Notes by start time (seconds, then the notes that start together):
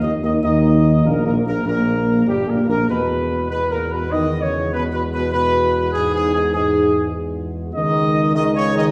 0.02 D#2 D#3 D#4 D#5
0.22 D#2 D#3 D#4 D#5
0.43 D#2 D#3 D#4 D#5
1.04 A#1 A#2 A#3 A#4
1.25 A#1 A#2 A#3 A#4
1.45 A#1 A#2 A#3 A#4
1.65 A#1 A#2 A#3 A#4
2.27 G1 G2 G3 G4
2.47 A#1 A#2 A#3 A#4
2.68 A#1 A#2 A#3 A#4
2.88 E2 B2 G#3 F#4 B4
3.50 B2 B4
3.70 A#2 A#4
3.91 B2 B4
4.11 D#3 D#5
4.42 C#3 C#5
4.73 B2 B4
4.93 B2 B4
5.13 B2 B4
5.32 B2 B4
5.92 G#2 G#4
6.14 G#2 G#4
6.34 G#2 G#4
6.53 G#2 G#4
7.74 C#2 D#3 G#3 D#4 D#5
8.35 D#3 G#3 D#4 D#5
8.55 C#3 C#5
8.75 D#3 D#5